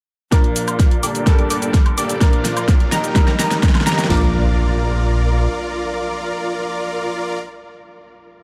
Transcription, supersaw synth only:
0.32 1.00 F4 medium
0.32 1.00 A#4 medium
0.32 1.00 D5 medium
1.03 1.36 A#3 medium
1.03 1.36 D4 medium
1.03 1.36 G4 medium
1.03 1.36 A4 medium
1.03 1.36 D5 loud
1.39 1.49 A#3 medium
1.39 1.49 D4 medium
1.39 1.49 G4 medium
1.39 1.49 A4 medium
1.39 1.49 D5 medium
1.50 1.78 A#3 medium
1.50 1.78 D4 medium
1.50 1.78 G4 medium
1.50 1.78 A4 medium
1.50 1.78 D5 loud
1.98 2.18 A#3 medium
1.98 2.18 D4 medium
1.98 2.18 G4 medium
1.98 2.18 A4 medium
1.98 2.18 D5 loud
2.21 2.89 F4 medium
2.21 2.89 A#4 medium
2.21 2.89 D5 medium
2.92 3.25 D#4 loud
2.92 3.25 G4 medium
2.92 3.25 A#4 loud
3.28 3.38 D#4 medium
3.28 3.38 G4 medium
3.28 3.38 A#4 medium
3.39 3.67 D#4 loud
3.39 3.67 G4 medium
3.39 3.67 A#4 loud
3.87 4.07 D#4 medium
3.87 4.07 G4 medium
3.87 4.07 A#4 loud
4.10 7.39 F4 medium
4.10 7.39 A#4 medium
4.10 7.39 D5 medium

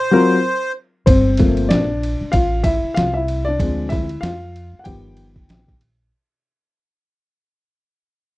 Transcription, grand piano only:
0.11 0.35 F#3 medium
0.11 0.36 C4 medium
0.11 0.36 F4 medium
0.11 0.36 A#4 medium
1.06 1.39 C4 medium
1.06 1.71 C5 medium
1.39 1.83 F3 soft
1.39 1.83 A3 soft
1.39 1.83 A#3 medium
1.39 1.83 C4 medium
1.69 2.30 D4 medium
1.69 2.34 D5 medium
2.32 2.64 F4 medium
2.32 2.62 F5 medium
2.63 2.95 E4 medium
2.63 2.97 E5 medium
2.94 3.14 F4 medium
2.94 3.13 F5 medium
3.14 3.45 E4 medium
3.14 3.47 E5 medium
3.45 3.89 D4 medium
3.45 3.91 D5 medium
3.60 4.04 F3 medium
3.60 4.04 G#3 medium
3.60 4.04 C4 medium
3.89 4.21 E4 medium
3.89 4.22 E5 medium
4.21 4.77 F4 medium
4.21 4.81 F5 medium
4.79 4.85 F#5 medium
4.84 5.76 D#3 soft
4.84 5.77 F3 soft
4.84 5.77 B3 medium
4.84 5.77 G4 medium
4.84 5.76 G5 medium

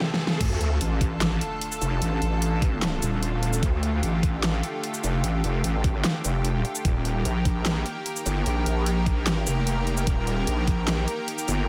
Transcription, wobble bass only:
0.41 0.79 D2 medium
0.81 1.40 A1 medium
1.81 2.00 F1 loud
2.02 2.20 A1 loud
2.22 3.01 A1 loud
3.02 3.61 D#1 medium
3.63 4.01 D2 loud
4.03 4.62 A1 loud
5.04 5.22 F1 loud
5.24 5.42 A1 medium
5.44 5.63 F1 loud
5.64 6.03 A1 loud
6.25 6.63 F1 loud
6.85 7.24 D#1 medium
7.25 7.84 A#1 loud
8.26 8.44 G1 loud
8.46 8.65 A#1 medium
8.66 9.22 A#1 loud
9.22 9.45 A1 loud
9.47 10.05 F1 loud
10.07 10.46 D#1 medium
10.47 11.06 A#1 loud
11.48 11.67 G1 loud

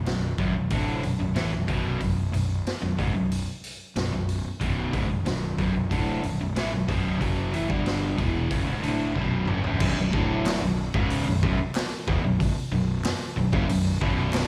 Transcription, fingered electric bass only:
0.07 0.37 B0 medium
0.39 0.54 B0 medium
0.55 0.70 B0 medium
0.71 1.01 D1 medium
1.04 1.19 B0 medium
1.20 1.35 B0 medium
1.36 1.51 A1 medium
1.53 1.68 B0 medium
1.68 1.99 B0 medium
2.01 2.31 B0 medium
2.34 2.64 B0 medium
2.83 2.98 B0 medium
2.99 3.14 C#1 medium
3.15 3.45 B0 medium
3.96 4.11 B0 medium
4.13 4.43 B0 medium
4.61 4.91 B0 medium
4.93 5.09 C#1 medium
5.11 5.25 B0 medium
5.27 5.57 B0 medium
5.58 5.74 B0 medium
5.75 5.90 B0 medium
5.91 6.22 D1 medium
6.24 6.39 B0 medium
6.40 6.55 B0 medium
6.57 6.72 A1 medium
6.73 6.88 B0 medium
6.88 7.19 B0 medium
7.21 7.51 F#1 medium
7.54 7.69 A1 medium
7.70 8.15 G1 medium
8.19 8.49 E1 medium
8.51 8.66 F#1 medium
8.68 8.83 C#1 medium
8.84 9.14 D1 medium
9.16 9.46 B0 medium
9.49 9.64 F#1 medium
9.65 9.80 B0 medium
9.81 9.96 B0 medium
9.97 10.12 B0 medium
10.13 10.58 D1 loud
10.63 10.92 B0 medium
10.94 11.24 C#1 loud
11.27 11.42 B0 medium
11.43 11.58 B0 medium
12.08 12.23 E1 medium
12.24 12.54 B0 medium
12.72 13.02 B0 medium
13.37 13.52 B0 medium
13.53 13.68 F#1 medium
13.69 13.99 B0 medium
14.02 14.47 B0 medium

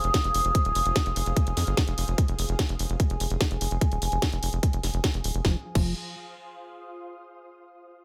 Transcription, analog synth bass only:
0.04 0.11 F1 medium
0.24 0.31 F1 medium
0.34 0.42 F1 loud
0.45 0.52 F1 medium
0.65 0.72 D#1 medium
0.75 0.83 F1 loud
0.85 0.93 F1 medium
1.06 1.13 F1 medium
1.16 1.23 F1 loud
1.26 1.34 F1 loud
1.47 1.54 F1 medium
1.57 1.64 F2 loud
1.67 1.74 G1 loud
1.88 1.95 F1 medium
1.98 2.05 F1 loud
2.08 2.15 F1 medium
2.28 2.36 F1 medium
2.39 2.46 F1 loud
2.49 2.56 F1 medium
2.69 2.76 F1 medium
2.79 2.87 F1 loud
2.90 2.97 F1 medium
3.10 3.17 F1 medium
3.20 3.27 F1 loud
3.30 3.38 F1 medium
3.51 3.58 F1 medium
3.61 3.68 F1 loud
3.71 3.78 F1 medium
3.92 3.99 D#1 medium
4.02 4.09 F1 loud
4.12 4.19 F1 medium
4.32 4.40 F1 medium
4.43 4.50 F1 loud
4.53 4.60 F1 medium
4.73 4.80 F1 medium
4.83 4.91 F1 loud
4.94 5.01 F1 loud
5.14 5.21 F1 medium
5.24 5.31 D#1 loud
5.34 5.42 F1 medium
5.45 5.56 F1 loud
5.75 5.94 F1 loud

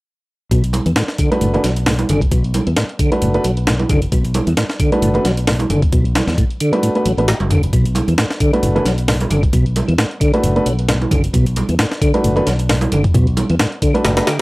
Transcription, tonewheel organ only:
0.51 0.63 B2 loud
0.86 0.92 E3 medium
0.96 1.03 A2 medium
1.19 1.30 D3 loud
1.41 1.48 A2 medium
1.64 1.71 F#3 medium
1.87 1.93 A2 medium
2.09 2.21 D3 loud
2.32 2.43 B2 medium
2.67 2.72 E3 medium
2.77 2.84 A2 medium
2.99 3.11 D3 loud
3.22 3.29 A2 medium
3.45 3.51 F#3 medium
3.67 3.74 A2 medium
3.89 4.01 D3 loud
4.12 4.24 B2 loud
4.47 4.53 E3 medium
4.57 4.64 A2 medium
4.80 4.91 D3 loud
5.03 5.09 A2 medium
5.25 5.32 F#3 medium
5.47 5.54 A2 medium
5.70 5.81 D3 loud
5.93 6.04 B2 loud
6.28 6.33 E3 medium
6.38 6.45 A2 medium
6.61 6.72 D3 loud
6.83 6.90 A2 medium
7.05 7.12 F#3 medium
7.28 7.35 A2 medium
7.51 7.62 D3 medium
7.73 7.85 B2 loud
8.08 8.14 E3 medium
8.18 8.25 A2 medium
8.40 8.52 D3 loud
8.63 8.70 A2 medium
8.86 8.93 F#3 medium
9.09 9.15 A2 medium
9.31 9.42 D3 loud
9.53 9.65 B2 loud
9.88 9.94 E3 medium
9.98 10.05 A2 medium
10.20 10.32 D3 loud
10.43 10.50 A2 medium
10.66 10.73 F#3 medium
10.89 10.96 A2 medium
11.11 11.22 D3 loud
11.33 11.46 B2 loud
11.69 11.74 E3 medium
11.79 11.86 A2 medium
12.02 12.13 D3 loud
12.24 12.31 A2 medium
12.47 12.53 F#3 medium
12.70 12.76 A2 medium
12.92 13.03 D3 loud
13.15 13.26 B2 loud
13.50 13.55 E3 medium
13.60 13.67 A2 medium
13.82 13.93 D3 loud
14.05 14.12 A2 medium
14.27 14.39 D3 medium

